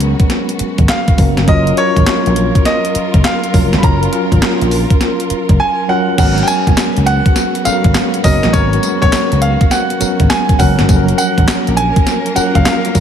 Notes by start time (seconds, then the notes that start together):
Already playing: C#2 F#3 G#3 B3 C#4 F#4 A#4 G#5
0.00 closed hi-hat
0.20 kick, closed hi-hat
0.30 snare, closed hi-hat
0.49 closed hi-hat
0.59 muted slap bass stroke, closed hi-hat
0.78 G#1, kick, closed hi-hat
0.89 F5, snare, clap, closed hi-hat
1.08 kick, closed hi-hat
1.18 F#1 F#3 B3 C#4 A#4, kick, open hi-hat
1.37 G1, snare, closed hi-hat
1.47 F#1 F#3 C#4 F4 A#4 D#5, kick, closed hi-hat
1.67 closed hi-hat
1.77 F#3 C#4 F4 A#4 C#5, closed hi-hat
1.97 G#1, kick, closed hi-hat
2.06 muted slap bass stroke, snare, clap, closed hi-hat
2.26 A#1, closed hi-hat
2.36 closed hi-hat
2.55 kick, closed hi-hat
2.65 D#5, snare, closed hi-hat
2.85 closed hi-hat
2.95 muted slap bass stroke, closed hi-hat
3.14 F#1, kick, closed hi-hat
3.24 F5, snare, clap, closed hi-hat
3.44 closed hi-hat
3.53 F1 F#3 C#4 F4 A#4, kick, open hi-hat
3.73 G1, snare, closed hi-hat
3.78 B5
3.83 F#1 F#3 C#4 F4 A#4 A#5, kick, closed hi-hat
4.03 closed hi-hat
4.12 F#3 C#4 F4 A#4, closed hi-hat
4.32 G#1, kick, closed hi-hat
4.42 muted slap bass stroke, snare, clap, closed hi-hat
4.61 A#1, closed hi-hat
4.71 open hi-hat
4.90 kick, closed hi-hat
5.01 snare, closed hi-hat
5.20 closed hi-hat
5.30 muted slap bass stroke, closed hi-hat
5.49 F#1, kick, closed hi-hat
5.60 G#5
5.88 F#3 C#4 F4 A#4 F#5
6.18 G#1 F#3 G#3 B3 C#4 F#4 A#4 F#5, kick, closed hi-hat, crash, tambourine
6.38 closed hi-hat
6.43 G5
6.47 G#5, closed hi-hat, tambourine
6.67 B1, kick, closed hi-hat
6.77 muted slap bass stroke, snare, clap, closed hi-hat, tambourine
6.97 C#2, closed hi-hat
7.06 F#5, closed hi-hat
7.26 kick, closed hi-hat
7.36 snare, closed hi-hat, tambourine
7.55 closed hi-hat
7.65 F#3 B3 C#4 A4 F5, muted slap bass stroke, closed hi-hat, tambourine
7.73 A#4
7.84 G#1, kick, closed hi-hat
7.95 snare, clap, closed hi-hat, tambourine
8.14 closed hi-hat
8.24 F#1 F#3 B3 C#4 A#4 D#5, kick, open hi-hat, tambourine
8.43 A1, snare, closed hi-hat
8.53 G#1 F#3 A#3 C#4 A#4 C#5, kick, closed hi-hat, tambourine
8.60 B3
8.73 closed hi-hat
8.83 closed hi-hat, tambourine
9.02 B1 C#5, kick, closed hi-hat
9.12 muted slap bass stroke, snare, clap, closed hi-hat, tambourine
9.32 C#2, closed hi-hat
9.42 F5, closed hi-hat
9.61 kick, closed hi-hat
9.71 F#5, snare, closed hi-hat, tambourine
9.90 closed hi-hat
10.00 F#3 B3 C#4 A#4, muted slap bass stroke, closed hi-hat, tambourine
10.20 G#1, kick, closed hi-hat
10.30 G#5, snare, clap, closed hi-hat, tambourine
10.49 kick, closed hi-hat
10.59 F#1 F#3 B3 C#4 A#4 F#5, kick, open hi-hat, tambourine
10.79 G1, snare, closed hi-hat
10.88 F#1 F3 F#3 A#3 C#4 A4 A#4, kick, closed hi-hat, tambourine
10.96 A#4
11.08 closed hi-hat
11.18 F#5, closed hi-hat, tambourine
11.38 G#1, kick, closed hi-hat
11.48 muted slap bass stroke, snare, clap, closed hi-hat, tambourine
11.67 A#1, closed hi-hat
11.77 G#5, closed hi-hat
11.96 kick, closed hi-hat
12.06 snare, closed hi-hat, tambourine
12.26 closed hi-hat
12.35 F#3 C#4 F4 A#4 F#5, muted slap bass stroke, closed hi-hat, tambourine
12.55 F#1 F5, kick, closed hi-hat
12.65 F5, snare, clap, closed hi-hat, tambourine
12.85 closed hi-hat
12.94 F1 F#3 C#4 F4 A#4, kick, open hi-hat, tambourine